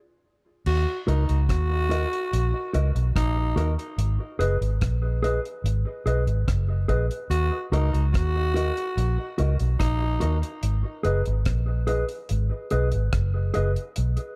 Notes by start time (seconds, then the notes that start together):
0.66 D#2 F#4, crash
1.07 C#2 D#4 F#4 A#4 D#5, closed hi-hat
1.29 C#2, closed hi-hat
1.49 D#2 F#4, kick, cross-stick, closed hi-hat
1.90 F#4 A#4 D#5, closed hi-hat
2.13 closed hi-hat
2.33 A#1, closed hi-hat
2.73 C#2 F#4 A#4 D#5, closed hi-hat
2.95 B1, muted clean electric guitar stroke, closed hi-hat
3.16 A#1 D#4, kick, cross-stick, closed hi-hat
3.56 D#2 F#4 A#4 D#5, closed hi-hat
3.79 closed hi-hat
3.98 G#1, closed hi-hat
4.39 F#1 G#4 B4 D#5, closed hi-hat
4.61 G#1, closed hi-hat
4.81 A#1, kick, cross-stick, closed hi-hat
5.23 G#4 B4 D#5, closed hi-hat
5.45 closed hi-hat
5.64 G#1, closed hi-hat
6.06 B1 G#4 B4 D#5, closed hi-hat
6.27 G#1, closed hi-hat
6.48 F#1, kick, cross-stick, closed hi-hat
6.88 A#1 G#4 B4 D#5, kick, closed hi-hat
7.11 closed hi-hat
7.30 D#2 F#4, closed hi-hat
7.72 C#2 D#4 F#4 A#4 D#5, closed hi-hat
7.94 C#2, closed hi-hat
8.13 D#2 F#4, kick, cross-stick, closed hi-hat
8.54 F#4 A#4 D#5, closed hi-hat
8.77 closed hi-hat
8.97 A#1, closed hi-hat
9.38 C#2 F#4 A#4 D#5, closed hi-hat
9.60 B1, muted clean electric guitar stroke, closed hi-hat
9.79 A#1 D#4, kick, cross-stick, closed hi-hat
10.20 D#2 F#4 A#4 D#5, closed hi-hat
10.43 closed hi-hat
10.63 G#1, closed hi-hat
11.03 F#1 G#4 B4 D#5, closed hi-hat
11.26 G#1, closed hi-hat
11.45 A#1, kick, cross-stick, closed hi-hat
11.87 G#4 B4 D#5, closed hi-hat
12.09 closed hi-hat
12.29 G#1, closed hi-hat
12.70 B1 G#4 B4 D#5, closed hi-hat
12.92 G#1, muted clean electric guitar stroke, closed hi-hat
13.13 F#1, kick, cross-stick, closed hi-hat
13.54 F#1 G#4 B4 D#5, closed hi-hat
13.76 closed hi-hat
13.96 B1, closed hi-hat
14.17 closed hi-hat